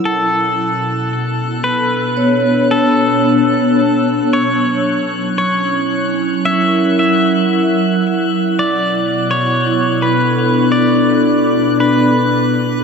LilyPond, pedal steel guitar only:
\new Staff \with { instrumentName = "Pedal steel guitar" } { \time 4/4 \key b \minor \tempo 4 = 56 a'4. b'4 a'4. | cis''4 cis''4 e''8 e''4. | \tuplet 3/2 { d''4 cis''8~ cis''8 b'4 } d''4 b'4 | }